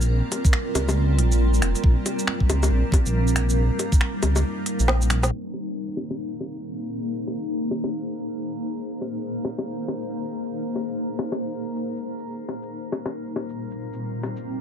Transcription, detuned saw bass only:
0.10 A#1
0.75 C#2
1.19 A#1
1.62 F1
1.84 A#1
2.49 C#2
2.71 A#1
3.06 A#1
3.58 A#1
4.23 C#2
4.80 A#1

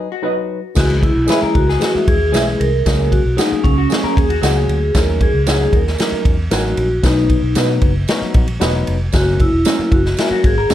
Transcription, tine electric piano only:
0.22 F#3 D#4 B4
0.75 E3 G#3 C#4 G#4
1.26 E3 G#3 C#4 G#4
1.79 E3 G#3 C#4 G#4
2.32 E3 G#3 C#4 G#4
2.86 F#3 A#3 C#4 G#4
3.37 F#3 A#3 C#4 G#4
3.89 F#3 A#3 C#4 G#4
4.42 F#3 A#3 C#4 G#4
4.95 F#3 C#4 D#4 A#4
5.47 F#3 C#4 D#4 G#4
5.99 F#3 C#4 D#4 A#4
6.51 F#3 C#4 D#4 A#4
7.03 F#3 B3 D#4 B4
7.56 F#3 B3 D#4 B4
8.09 F#3 B3 D#4 F#4
8.60 F#3 B3 D#4 B4
9.13 F#3 A#3 C#4 A#4
9.65 F#3 A#3 C#4 A#4
10.19 F#3 A#3 C#4 A#4
10.69 F#3 A#3 C#4 F#4

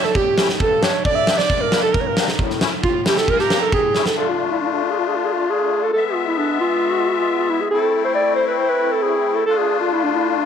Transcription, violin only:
0.03 A4
0.14 G4
0.58 A4
1.04 D5
1.38 D5
1.82 A4
1.93 A#4
2.82 F4
2.89 G4
2.94 F4
3.05 G4
3.28 A#4
3.73 G4

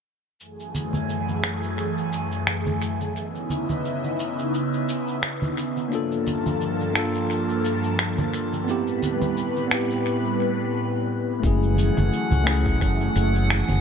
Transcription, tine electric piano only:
5.88 A#3 D4
5.92 F4 A4
6.92 A#3 D4
6.96 F4 A4
8.64 B3 C4
8.69 E4 G4
9.68 B3 C4
9.72 E4 G4
11.40 A3 C#4
11.45 E4 G#4
12.44 A3 C#4
12.48 E4 G#4

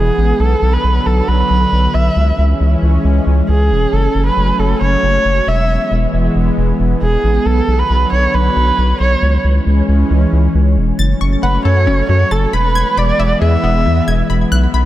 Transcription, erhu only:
Already playing: G#4
0.40 A4
0.73 B4
1.06 A4
1.28 B4
1.94 E5
3.49 G#4
3.93 A4
4.26 B4
4.59 A4
4.81 C#5
5.48 E5
7.02 G#4
7.46 A4
7.79 B4
8.12 C#5
8.34 B4
9.00 C#5
11.43 B4
11.65 C#5
12.09 C#5
12.31 A4
12.53 B4
12.98 D5
13.42 E5

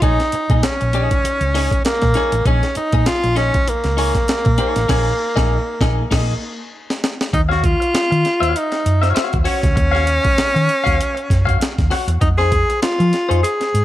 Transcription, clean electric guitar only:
0.02 D#4 G#4 C#5
0.20 muted clean electric guitar stroke
0.34 muted clean electric guitar stroke
0.51 D#4 G#4 D#5
0.81 muted clean electric guitar stroke
0.94 D#4 G#4 D#5
1.11 muted clean electric guitar stroke
1.25 muted clean electric guitar stroke
1.54 D#4 G#4 C#5
1.72 muted clean electric guitar stroke
2.02 muted clean electric guitar stroke
2.15 D#4 G#4 C#5
2.34 muted clean electric guitar stroke
2.46 D#4 G#4 C#5
2.63 muted clean electric guitar stroke
2.77 muted clean electric guitar stroke
2.94 D#4 G#4 D#5
3.23 muted clean electric guitar stroke
3.36 D#4 G#4 D#5
3.53 muted clean electric guitar stroke
3.67 muted clean electric guitar stroke
3.97 D#4 G#4 C#5
4.15 muted clean electric guitar stroke
4.45 muted clean electric guitar stroke
4.58 D#4 G#4 C#5
4.76 muted clean electric guitar stroke
4.89 D#4 G#4 C#5
5.36 D#4 G#4 D#5
5.81 D#4 G#4 D#5
6.11 D#4 G#4 D#5
7.33 muted clean electric guitar stroke
7.49 F#4 C#5 F5
7.62 muted clean electric guitar stroke
7.80 muted clean electric guitar stroke
7.94 muted clean electric guitar stroke
8.11 muted clean electric guitar stroke
8.40 F#4 C#5 F5
8.54 muted clean electric guitar stroke
8.72 muted clean electric guitar stroke
9.02 F#4 C#5 F5
9.14 F#4 C#5 F5
9.32 muted clean electric guitar stroke
9.44 F#4 C#5 F#5
9.62 muted clean electric guitar stroke
9.75 muted clean electric guitar stroke
9.91 F#4 C#5 F5
10.05 muted clean electric guitar stroke
10.24 muted clean electric guitar stroke
10.37 muted clean electric guitar stroke
10.54 muted clean electric guitar stroke
10.84 F#4 C#5 F5
10.97 muted clean electric guitar stroke
11.15 muted clean electric guitar stroke
11.45 F#4 C#5 F5
11.59 muted clean electric guitar stroke
11.91 F#4 C#5 F#5
12.08 muted clean electric guitar stroke
12.21 muted clean electric guitar stroke
12.38 D#4 G#4 C5
12.52 muted clean electric guitar stroke
12.70 muted clean electric guitar stroke
12.82 muted clean electric guitar stroke
12.99 muted clean electric guitar stroke
13.29 D#4 G#4 C5
13.44 muted clean electric guitar stroke
13.60 muted clean electric guitar stroke

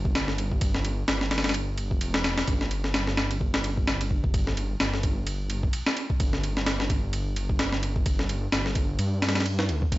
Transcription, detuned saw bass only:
Already playing: G1
1.08 G1
1.91 F1
2.48 G1
4.80 G1
6.20 G1
8.52 G1
8.99 G2
9.69 D2
9.92 G1

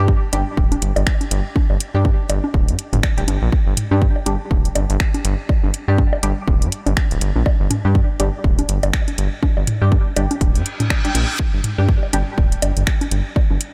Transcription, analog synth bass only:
0.00 G2
0.33 G1
0.57 D1
0.82 G1
0.96 G1
1.31 G1
1.70 G1
1.95 G2
2.29 G1
2.54 D1
2.68 G2
2.93 G1
3.17 D1
3.28 G1
3.42 A#1
3.67 G1
3.91 G2
4.26 G1
4.51 D1
4.76 G1
4.90 G1
5.25 G1
5.64 G1
5.88 G2
6.23 G1
6.48 D1
6.62 G2
6.86 G1
7.11 D1
7.21 G1
7.36 A#1
7.60 G1
7.85 G2
8.20 G1
8.44 D1
8.69 G1
8.83 G1
9.18 G1
9.57 G1
9.82 G2
10.17 G1
10.41 D1
10.55 G2
11.15 A#1
11.54 G1
11.78 G2
12.13 G1
12.38 D1
12.62 G1
12.77 G1
13.11 G1
13.50 G1

